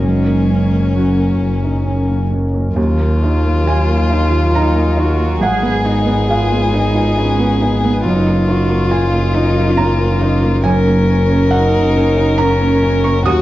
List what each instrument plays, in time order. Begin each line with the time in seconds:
Already playing: double bass F#1, ambient pad A#4
0.03 felt piano F#2, ambient pad F#3 C#4, cello G#3, violin C#4
0.27 felt piano A#3
0.50 felt piano C#4
0.73 felt piano A#3
0.95 cello F#3, felt piano F#4
1.18 felt piano A#3
1.41 felt piano C#4
1.64 felt piano D#4
1.86 felt piano C#4
2.08 felt piano A#3
2.31 felt piano C#4
2.54 felt piano A#3
2.76 felt piano D#2, double bass D#2, ambient pad F#3 A#4 F5, violin F4
3.00 felt piano A#3
3.23 felt piano D#4
3.44 felt piano A#3
3.67 cello F4, felt piano F4 G#5
3.88 felt piano A#3
4.11 felt piano D#4
4.31 felt piano F4
4.54 felt piano D#4 A#5, cello D#4
4.76 felt piano A#3
4.97 felt piano D#4, cello F#4
5.19 felt piano A#3
5.41 double bass G#1, felt piano G#2 F#5, ambient pad G#3 D#4 B4, cello G#4, violin G#4
5.63 felt piano B3
5.85 felt piano D#4, cello D#4
6.06 felt piano B3
6.29 cello F4, felt piano G#4 F5
6.52 felt piano B3
6.73 felt piano D#4, cello D#4
6.95 felt piano F4
7.17 cello C#4, felt piano D#4
7.39 felt piano B3
7.61 cello B3, felt piano D#4
7.84 felt piano B3
8.05 double bass F#1, felt piano F#2, ambient pad F#3 A#4, cello D#4, violin F4
8.27 felt piano A#3
8.48 felt piano D#4, cello F#4
8.69 felt piano A#3
8.91 felt piano F4 G#5, cello F4
9.12 felt piano A#3
9.35 felt piano D#4, cello D#4
9.57 felt piano F4
9.77 cello A#3, felt piano D#4 A#5
9.99 felt piano A#3
10.22 felt piano D#4
10.43 felt piano A#3
10.64 felt piano F#2 G#5, ambient pad F#3 C#4, cello C#4, violin A#4
10.87 felt piano A#3
11.09 felt piano C#4
11.31 felt piano A#3
11.51 cello D#4, felt piano F#4 F#5
11.74 felt piano A#3
11.96 felt piano C#4
12.17 felt piano D#4
12.38 felt piano C#4 A#5, cello C#4
12.61 felt piano A#3
12.82 felt piano C#4
13.04 felt piano A#3 C#6
13.26 felt piano D#2 D#6, double bass D#2, violin F#4, cello F#4, ambient pad A#4 F5